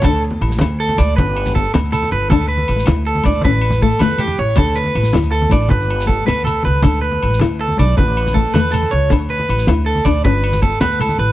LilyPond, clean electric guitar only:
\new Staff \with { instrumentName = "Clean electric guitar" } { \time 12/8 \key g \lydian \tempo 4. = 106 a'8 r4. a'8 d''8 b'4 a'8 r8 a'8 b'8 | a'8 b'4 r8 a'8 d''8 b'4 a'8 b'8 g'8 cis''8 | a'8 b'4 r8 a'8 d''8 b'4 a'8 b'8 a'8 b'8 | a'8 b'4 r8 a'8 d''8 b'4 a'8 b'8 a'8 cis''8 |
r8 b'4 r8 a'8 d''8 b'4 a'8 b'8 a'8 b'8 | }